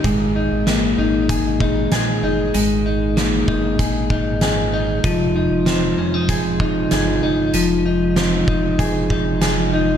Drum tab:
HH |x-x-x-x-|x-x-x-x-|x-x-x-x-|x-x-x-x-|
SD |--o---o-|--o---o-|--o---o-|--o---o-|
BD |o---oo--|---ooo--|o---oo--|---ooo--|